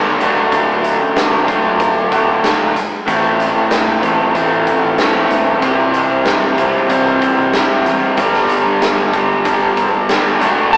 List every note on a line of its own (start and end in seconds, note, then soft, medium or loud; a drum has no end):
0.00 0.18 G2 medium
0.00 0.19 G2 medium
0.00 0.18 D3 medium
0.00 0.19 D3 medium
0.00 0.20 G3 medium
0.00 0.20 B3 medium
0.00 0.20 D4 medium
0.19 0.36 F#1 medium
0.19 1.46 D3 medium
0.19 1.14 F#3 medium
0.19 1.17 A3 medium
0.19 1.48 A3 medium
0.19 1.15 D4 medium
0.19 1.46 D4 medium
0.19 1.16 F#4 loud
0.19 closed hi-hat medium
0.52 0.97 F#1 loud
0.52 kick loud
0.52 closed hi-hat medium
0.84 closed hi-hat medium
0.99 1.45 F#2 medium
1.16 2.10 F#3 medium
1.16 2.11 A3 medium
1.16 2.11 D4 medium
1.16 2.11 F#4 medium
1.16 snare loud
1.16 closed hi-hat medium
1.47 1.63 F#1 medium
1.47 2.75 D3 medium
1.47 2.74 A3 medium
1.47 2.73 D4 medium
1.47 kick medium
1.47 closed hi-hat medium
1.80 2.10 F#1 medium
1.80 kick loud
1.80 closed hi-hat medium
2.12 2.75 F#3 medium
2.12 2.75 A3 medium
2.12 2.75 D4 medium
2.12 2.74 F#4 medium
2.12 kick medium
2.12 closed hi-hat medium
2.28 2.58 F#1 medium
2.44 snare loud
2.44 closed hi-hat medium
2.75 2.91 G1 medium
2.75 closed hi-hat medium
3.06 3.53 A1 loud
3.06 4.32 A2 medium
3.06 4.01 A2 medium
3.06 4.05 E3 medium
3.06 4.35 E3 medium
3.06 4.02 A3 medium
3.06 4.35 A3 medium
3.06 4.03 C4 medium
3.06 4.02 E4 medium
3.06 kick loud
3.06 closed hi-hat medium
3.40 closed hi-hat medium
3.55 4.00 A2 medium
3.71 snare loud
3.71 closed hi-hat medium
4.02 4.18 A1 medium
4.02 4.98 A2 medium
4.02 4.98 E3 medium
4.02 4.98 A3 medium
4.02 4.97 C4 medium
4.02 4.97 E4 medium
4.02 kick medium
4.02 closed hi-hat medium
4.33 4.65 A1 medium
4.33 5.60 A2 medium
4.33 5.61 E3 medium
4.33 kick loud
4.33 closed hi-hat medium
4.38 5.62 A3 medium
4.67 kick medium
4.67 closed hi-hat medium
4.83 4.98 A1 medium
4.98 5.13 F#2 medium
4.98 5.61 A2 medium
4.98 5.61 E3 medium
4.98 5.62 A3 medium
4.98 5.62 C4 medium
4.98 5.63 E4 medium
4.98 snare loud
4.98 closed hi-hat medium
5.14 5.29 E2 medium
5.30 5.45 D2 medium
5.30 closed hi-hat medium
5.45 5.61 C2 medium
5.61 6.08 C2 loud
5.61 6.87 C3 medium
5.61 6.57 C3 medium
5.61 6.57 E3 medium
5.61 6.89 G3 medium
5.61 6.58 G3 medium
5.61 6.90 C4 medium
5.61 6.57 C4 medium
5.61 kick loud
5.61 closed hi-hat medium
5.65 6.56 E4 medium
5.94 closed hi-hat medium
6.10 6.55 C3 medium
6.25 snare loud
6.25 closed hi-hat medium
6.57 6.73 C2 medium
6.57 7.52 C3 medium
6.57 7.53 E3 medium
6.57 7.52 G3 medium
6.57 7.52 C4 medium
6.57 7.52 E4 medium
6.57 kick medium
6.57 closed hi-hat medium
6.88 7.20 C2 medium
6.88 8.15 C3 medium
6.88 8.16 G3 medium
6.88 8.17 C4 medium
6.88 kick medium
6.88 closed hi-hat medium
7.21 kick medium
7.21 closed hi-hat medium
7.38 7.68 C2 medium
7.53 8.16 C3 medium
7.53 8.16 E3 medium
7.53 8.16 G3 medium
7.53 8.17 C4 medium
7.53 8.17 E4 medium
7.53 snare loud
7.53 closed hi-hat medium
7.86 8.01 E2 medium
7.86 closed hi-hat medium
8.16 8.63 G1 loud
8.16 9.43 G2 medium
8.16 9.44 D3 medium
8.16 9.11 G3 medium
8.16 9.45 G3 medium
8.16 9.12 B3 medium
8.16 9.14 D4 medium
8.16 kick loud
8.16 closed hi-hat medium
8.21 9.12 G4 medium
8.34 snare soft
8.49 closed hi-hat medium
8.66 9.11 G2 medium
8.82 snare loud
8.82 closed hi-hat medium
9.13 9.28 G1 medium
9.13 10.08 G3 medium
9.13 10.08 B3 medium
9.13 10.08 D4 medium
9.13 10.07 G4 medium
9.13 kick medium
9.13 closed hi-hat medium
9.44 9.75 G1 medium
9.44 10.38 G2 medium
9.44 10.38 D3 medium
9.44 10.40 G3 medium
9.44 kick loud
9.44 closed hi-hat medium
9.77 kick medium
9.77 closed hi-hat medium
9.93 10.23 G1 medium
10.09 10.39 G3 medium
10.09 10.40 B3 medium
10.09 10.40 D4 medium
10.09 10.41 G4 medium
10.09 snare loud
10.09 closed hi-hat medium
10.39 10.56 F#1 medium
10.39 10.77 D3 medium
10.39 10.77 F#3 medium
10.39 10.77 A3 medium
10.39 closed hi-hat medium
10.43 10.77 D4 medium
10.43 10.77 F#4 loud
10.73 10.77 F#1 loud
10.73 10.77 A5 medium
10.73 kick loud
10.73 closed hi-hat medium